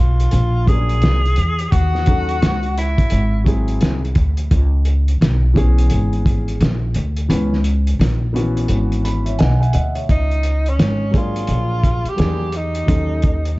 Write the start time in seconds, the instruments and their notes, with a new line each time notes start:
Already playing: upright bass B1
0.00 tenor saxophone F4
0.20 closed hi-hat
0.31 upright bass A#1, closed hi-hat
0.66 grand piano F#3 A#3 C#4 G#4, tenor saxophone G#4, kick, closed hi-hat
0.75 grand piano D4
0.89 closed hi-hat
1.02 upright bass C2, snare, closed hi-hat
1.25 closed hi-hat
1.36 upright bass E2, closed hi-hat
1.59 closed hi-hat
1.71 upright bass D#2, tenor saxophone F#4, kick, closed hi-hat
1.95 snare
2.06 grand piano F#3 C#4 D#4 A4, kick, closed hi-hat
2.29 closed hi-hat
2.42 upright bass C#2, snare, closed hi-hat
2.63 closed hi-hat
2.78 tenor saxophone E4, closed hi-hat
2.98 muted upright bass stroke, kick, closed hi-hat
3.10 upright bass G#1, closed hi-hat
3.44 grand piano F#3 C4 E4 G#4, kick, closed hi-hat
3.68 closed hi-hat
3.81 upright bass C2, snare, closed hi-hat
4.05 closed hi-hat
4.15 upright bass D2, kick, closed hi-hat
4.37 closed hi-hat
4.51 upright bass C#2, kick, closed hi-hat
4.85 closed hi-hat
5.08 closed hi-hat
5.21 upright bass B1, snare, closed hi-hat
5.54 grand piano E3 B3 C#4 G#4, kick, closed hi-hat
5.78 closed hi-hat
5.90 upright bass G#1, closed hi-hat
6.13 closed hi-hat
6.26 kick, closed hi-hat
6.48 closed hi-hat
6.61 upright bass A#1, snare, closed hi-hat
6.94 upright bass D2, closed hi-hat
7.16 closed hi-hat
7.28 upright bass C#2, grand piano E3 B3 C#4 B4, closed hi-hat
7.53 snare
7.64 closed hi-hat
7.87 closed hi-hat
7.99 upright bass A#1, snare, closed hi-hat
8.33 grand piano D#3 B3 C#4 F#4, closed hi-hat
8.40 grand piano E3
8.57 closed hi-hat
8.68 upright bass G#1, closed hi-hat
8.92 closed hi-hat
9.05 grand piano B5, closed hi-hat
9.26 grand piano C#5 E5, closed hi-hat
9.39 upright bass B1, grand piano D#5 F#5 G#5, snare, closed hi-hat
9.60 grand piano E5 F#5 G#5, closed hi-hat
9.73 upright bass D2, grand piano D#5 E5 F#5, closed hi-hat
9.95 grand piano C#5 E5, closed hi-hat
10.09 upright bass C#2, tenor saxophone D#4, kick, closed hi-hat
10.31 closed hi-hat
10.43 closed hi-hat
10.66 tenor saxophone C#4, closed hi-hat
10.79 upright bass G#1, snare, closed hi-hat
11.11 grand piano F#3 A#3 D4 G#4, kick, closed hi-hat
11.18 tenor saxophone F4
11.36 closed hi-hat
11.47 upright bass A#1, closed hi-hat
11.84 kick, closed hi-hat
12.05 tenor saxophone G4, muted upright bass stroke, closed hi-hat
12.16 upright bass E2, grand piano F#3 A#3 D4 G#4, snare, closed hi-hat
12.52 closed hi-hat
12.56 tenor saxophone D#4
12.75 closed hi-hat
12.86 upright bass D#2, grand piano F#3 C#4 D#4 A4, kick, closed hi-hat
13.22 kick, closed hi-hat
13.45 closed hi-hat